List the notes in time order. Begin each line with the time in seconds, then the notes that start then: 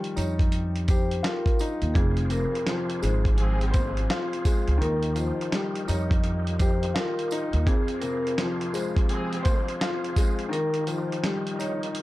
Already playing: D#3 F3 G3
0.04 closed hi-hat
0.16 F2 D#4 C#5, closed hi-hat, tambourine
0.39 kick, closed hi-hat
0.52 closed hi-hat
0.76 closed hi-hat
0.88 G4 C5, kick, closed hi-hat, tambourine
1.11 closed hi-hat
1.23 F4 A#4, snare, closed hi-hat
1.46 kick, closed hi-hat
1.59 D#4, closed hi-hat, tambourine
1.82 D#2, closed hi-hat
1.94 F1 F2 F3 F4 G#4 C5, kick, closed hi-hat
2.17 closed hi-hat
2.30 C3 A#4, closed hi-hat, tambourine
2.55 closed hi-hat
2.66 F3, snare, closed hi-hat
2.90 closed hi-hat
3.02 G#1 G#3 C5, closed hi-hat, tambourine
3.25 kick, closed hi-hat
3.37 F3 C4 G#4, closed hi-hat
3.61 closed hi-hat
3.71 C5, kick, closed hi-hat, tambourine
3.97 closed hi-hat
4.10 F4, snare, closed hi-hat
4.33 closed hi-hat
4.45 G#3, kick, closed hi-hat, tambourine
4.68 C#2, closed hi-hat
4.78 D#2 D#3 D#4 F4 G4 A#4
4.82 closed hi-hat
5.03 closed hi-hat
5.15 F3 C5, closed hi-hat, tambourine
5.41 closed hi-hat
5.52 G3, snare, closed hi-hat
5.75 closed hi-hat
5.88 F2 D#4 C#5, closed hi-hat, tambourine
6.11 kick, closed hi-hat
6.24 closed hi-hat
6.47 closed hi-hat
6.59 G4 C5, kick, closed hi-hat, tambourine
6.83 closed hi-hat
6.94 F4 A#4, snare, closed hi-hat
7.19 closed hi-hat
7.31 D#4, closed hi-hat, tambourine
7.53 D#2, closed hi-hat
7.66 F2 F3 G#4 C5, kick, closed hi-hat
7.88 closed hi-hat
8.00 C3 A#4, closed hi-hat, tambourine
8.27 closed hi-hat
8.38 F3, snare, closed hi-hat
8.61 closed hi-hat
8.74 G#3 C5, closed hi-hat, tambourine
8.97 kick, closed hi-hat
9.09 F3 C4 G#4, closed hi-hat
9.33 closed hi-hat
9.43 C5, kick, closed hi-hat, tambourine
9.68 closed hi-hat
9.81 F4, snare, closed hi-hat
10.04 closed hi-hat
10.16 G#3, kick, closed hi-hat, tambourine
10.39 closed hi-hat
10.49 D#3 D#4 G4 A#4
10.53 closed hi-hat
10.74 closed hi-hat
10.87 F3 C5, closed hi-hat, tambourine
11.12 closed hi-hat
11.24 G3, snare, closed hi-hat
11.47 closed hi-hat
11.59 D#4 C#5, closed hi-hat, tambourine
11.83 closed hi-hat
11.95 closed hi-hat